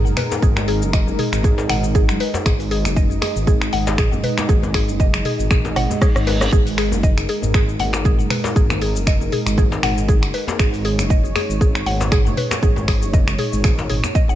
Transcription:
Already playing: G#3 D#4 A#4
0.06 F#1, cabasa
0.17 B4, finger snap, mid tom, open hi-hat, djembe tone
0.32 djembe slap, cabasa
0.42 G#1 G#4, kick, cabasa
0.56 finger snap, djembe slap, djembe tone, cabasa
0.68 G#4, open hi-hat
0.82 F#1, cabasa
0.93 D#5, finger snap, kick, cabasa
1.07 djembe tone, cabasa
1.19 G#4, mid tom, open hi-hat
1.33 G#1, finger snap, cabasa
1.43 G#4, kick, djembe tone, cabasa
1.58 djembe slap, cabasa
1.69 G#1 F#5, finger snap, mid tom, open hi-hat
1.84 cabasa
1.95 G#4, kick, djembe tone, cabasa
2.09 F#1, finger snap, cabasa
2.20 B4, open hi-hat
2.34 djembe slap, djembe tone, cabasa
2.46 G#1 G#4 D#5, finger snap, kick, cabasa
2.60 open hi-hat, cabasa
2.71 G#4, open hi-hat
2.85 F#1, finger snap, djembe tone, cabasa
2.96 D#5, kick, cabasa
3.11 cabasa
3.21 G#4, finger snap, open hi-hat, djembe tone
3.36 G#1, cabasa
3.47 G#4, kick, cabasa
3.62 finger snap, cabasa
3.72 G#1 F#5, open hi-hat, djembe tone
3.87 djembe slap, cabasa
3.98 G#4, finger snap, kick, mid tom, cabasa
4.12 F#1, djembe tone, cabasa
4.24 B4, mid tom, open hi-hat
4.38 finger snap, djembe slap, cabasa
4.49 G#1 G#4, kick, cabasa
4.63 djembe slap, djembe tone, cabasa
4.74 G#4, finger snap, kick, open hi-hat
4.88 F#1, cabasa
5.00 D#5, kick, djembe tone, cabasa
5.14 finger snap, cabasa
5.25 G#4, mid tom, open hi-hat
5.39 G#1, cabasa
5.50 G#4, finger snap, kick, mid tom, reverse cymbal, djembe tone, cabasa
5.65 djembe slap, cabasa
5.76 G#1 F#5, cross-stick, mid tom, open hi-hat
5.91 djembe tone, cabasa
6.02 G#4, kick, cross-stick, cabasa
6.16 G#1, cross-stick, cabasa
6.27 B4, open hi-hat, djembe slap
6.40 cross-stick, djembe slap, djembe tone, cabasa
6.52 G#1 G#4 A#4, kick, djembe tone, cabasa
6.67 open hi-hat, cabasa
6.78 G#4, finger snap, open hi-hat
6.92 F#1, djembe tone, cabasa
7.03 D#5, kick, cabasa
7.18 finger snap, cabasa
7.29 G#4, open hi-hat
7.42 G#1, djembe tone, cabasa
7.54 G#4, finger snap, kick, cabasa
7.69 cabasa
7.79 G#1 F#5, open hi-hat, djembe tone
7.93 finger snap, djembe slap, cabasa
8.05 G#4, kick, mid tom, cabasa
8.19 F#1, cabasa
8.30 B4, finger snap, mid tom, open hi-hat, djembe tone
8.44 djembe slap, cabasa
8.56 G#1 G#4, kick, cabasa
8.70 finger snap, djembe slap, djembe tone, cabasa
8.81 G#4, open hi-hat
8.96 F#1, cabasa
9.07 D#5, finger snap, kick, cabasa
9.21 djembe tone, cabasa
9.32 G#4, mid tom, open hi-hat
9.46 G#1, finger snap, cabasa
9.58 G#4, kick, djembe tone, cabasa
9.72 djembe slap, cabasa
9.83 G#1 F#5, finger snap, mid tom, open hi-hat
9.98 cabasa
10.09 G#4, kick, djembe tone, cabasa
10.23 F#1, finger snap, cabasa
10.34 B4, open hi-hat
10.48 djembe slap, djembe tone, cabasa
10.59 G#1 G#4 C#5, finger snap, kick, cabasa
10.74 open hi-hat, cabasa
10.85 G#4, open hi-hat
10.99 F#1, finger snap, djembe tone, cabasa
11.10 D#5, kick, cabasa
11.25 cabasa
11.35 G#4, finger snap, open hi-hat, djembe tone
11.50 G#1, cabasa
11.61 G#4, kick, cabasa
11.75 finger snap, cabasa
11.86 G#1 F#5, open hi-hat, djembe tone
12.01 djembe slap, cabasa
12.12 G#4, finger snap, kick, mid tom, cabasa
12.26 F#1, djembe tone, cabasa
12.37 B4, mid tom, open hi-hat
12.51 finger snap, djembe slap, cabasa
12.63 G#1 G#4, kick, cabasa
12.76 djembe slap, djembe tone, cabasa
12.88 G#4, finger snap, kick, open hi-hat
13.02 F#1, cabasa
13.13 D#5, kick, djembe tone, cabasa
13.28 finger snap, cabasa
13.39 G#4, mid tom, open hi-hat
13.53 G#1, cabasa
13.64 G#4, finger snap, kick, mid tom, djembe tone, cabasa
13.79 djembe slap, cabasa
13.90 G#1 G#4, mid tom, open hi-hat
14.04 finger snap, djembe tone, cabasa
14.15 D#5, kick, cabasa
14.29 G#1 F#5, cabasa

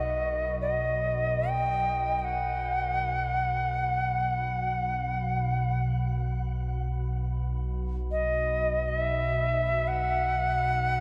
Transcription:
Already playing: D#4 F#4 D#5
0.02 B1
0.61 D#5
1.50 G5
2.19 G5
2.24 F#5
8.11 D#5
8.88 D#5
8.99 E5
9.88 F#5

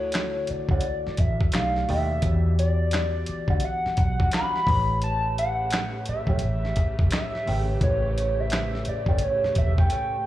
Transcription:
Already playing: D2 D3 A3 E4 F#4 A4 C#5
0.12 snare, clap, closed hi-hat
0.47 D5, muted fingered electric bass stroke, closed hi-hat
0.69 C#2 A3 C#4 F#4, kick
0.81 closed hi-hat
1.07 muted fingered electric bass stroke, snare
1.17 A1 E5, kick, closed hi-hat
1.41 kick
1.52 B1 B2 A3 D#4 G4 D5 F5, snare, clap, closed hi-hat
1.76 snare
1.88 D#2 B2 D#3 A3 D#4 G4 D5 E5, open hi-hat
2.22 E2 E3 B3 F#4 G4 C#5, kick, closed hi-hat
2.32 D5
2.59 D5, closed hi-hat
2.91 snare, clap, closed hi-hat
3.26 muted fingered electric bass stroke, closed hi-hat
3.48 D2 G3 D4 F#4, kick
3.60 closed hi-hat
3.64 F#5
3.86 muted fingered electric bass stroke, snare
3.97 B1 F#5, kick, closed hi-hat
4.20 G3 D4 F#4, kick
4.31 G3 D4 F#4 B5, snare, clap, closed hi-hat
4.56 snare
4.66 A1 A2 A3 G4 B4 C#5, kick, open hi-hat
5.01 C#3 A3 G4 A5, closed hi-hat
5.38 F#5, closed hi-hat
5.71 snare, clap, closed hi-hat
6.06 E5, muted fingered electric bass stroke, closed hi-hat
6.27 B1 A3 C#4 G4, kick
6.39 closed hi-hat
6.44 A1
6.65 snare
6.76 kick, closed hi-hat
6.99 F#1, kick
7.11 E5, snare, clap, closed hi-hat
7.35 snare
7.46 G#1 C#3 A3 C#4 G4 B4 E5, open hi-hat
7.81 A1 A2 A3 G4 B4 C5 C#5, kick, closed hi-hat
7.90 C#5
8.18 closed hi-hat
8.40 E5
8.50 snare, clap, closed hi-hat
8.75 snare
8.85 D5, muted fingered electric bass stroke, closed hi-hat
9.06 G1 A3 C#4 G4, kick
9.19 closed hi-hat
9.23 C#5
9.44 muted fingered electric bass stroke, snare
9.55 E1 E5, kick, closed hi-hat
9.78 A3 C#4 G4 G5, kick
9.90 A3 C#4 G4, closed hi-hat

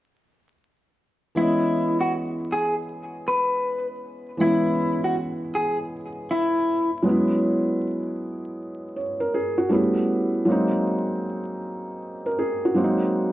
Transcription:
1.35 E3 G#3 B3 E4
1.40 C#4 D#5
2.01 F#4
2.52 G#4
3.28 B4
4.37 E3 G#3 B3 E4
4.42 C#4 E4
5.04 F#4
5.55 G#4
6.31 E4
7.02 F#3 G#3 B3
7.07 C#4 E4
8.96 C#5
9.20 A#4
9.34 G#4
9.58 F#4
9.69 G3 A3 B3 C#4 E4
10.45 F#3 G#3 A#3
10.50 C4 D#4
12.26 A#4
12.39 G#4
12.65 F#4
12.74 F#3 G#3 A#3 C4 C#4
12.84 D#4

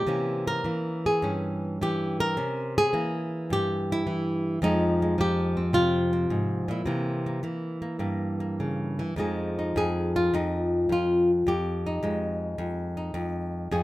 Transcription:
Already playing: G4
0.06 C3 E3 A#3 C#4
0.47 A#4
0.64 E3 A#3
1.06 G#4
1.22 G2 C#4
1.81 E3 G4
2.20 A#4
2.37 C3 C#4
2.78 G#4
2.93 E3 A#3
3.50 G2 G4
3.92 E4
4.07 E3
4.62 F2 F3 G#3 D#4
5.02 G#3
5.18 F3 G4
5.57 C4
5.73 C3 F4
6.13 C4
6.30 G#2
6.68 A#2 E4
6.86 C3 E3 A#3
7.26 A#3
7.43 E3 A#3
7.82 A#3
7.99 G2 A#3
8.40 A#3
8.60 C#3
8.99 E3
9.16 F2 F3 G#3 D#4 G#4
9.59 D#4
9.76 F2 G#4
10.16 F4
10.34 F2 D#4
10.89 F2 F4
11.47 F2 G4
11.86 D#4
12.03 F2 G#3
12.58 F2
12.97 D#4
13.14 F2
13.71 F2 G#4

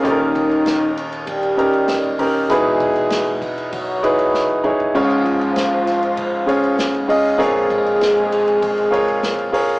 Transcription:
0.02 D#2 A#2 D#3 C#4 D#4 G4 A4, kick, hi-hat pedal, ride
0.10 A#4
0.35 kick, ride
0.51 ride
0.66 snare, ride
0.97 ride
1.12 ride
1.27 G3 G4, kick, ride
1.43 ride
1.57 C#4 D#4 G4 A#4, ride
1.73 ride
1.88 snare, ride
2.04 ride
2.19 C#4 D#4 G4 A#4, kick, open hi-hat, ride
2.35 ride
2.49 E2 B2 G#3 D#4 E4 G#4 B4, kick, hi-hat pedal, ride
2.80 kick, ride
2.96 ride
3.10 snare, ride
3.27 ride
3.42 kick, ride
3.58 ride
3.71 F#3 F#4, kick, ride
4.03 D#4 E4 G#4 B4, ride
4.19 ride
4.34 snare
4.63 D#4 E4 G#4 C#5, mid tom
4.80 floor tom
4.94 C#2 G#2 F3 C#4 F4 G#4 C#5, kick, crash
5.11 ride
5.25 kick, ride
5.41 ride
5.56 snare, ride
5.87 snare, ride
6.03 ride
6.17 kick, ride
6.46 C#4 F4 G#4 C#5, ride
6.64 ride
6.79 snare, ride
6.95 ride
7.08 C#4 F4 G#4 D#5, kick, open hi-hat, ride
7.25 ride
7.38 A#1 F2 G#3 F4 G#4 A#4 C#5, kick, hi-hat pedal, ride
7.70 kick, ride
7.86 ride
8.01 snare, ride
8.17 ride
8.32 ride
8.48 ride
8.62 kick, ride
8.78 ride
8.91 F4 G#4 A#4 C#5, ride
9.08 ride
9.23 snare, ride
9.39 ride
9.52 F4 G#4 A#4 C#5, open hi-hat, ride
9.69 ride

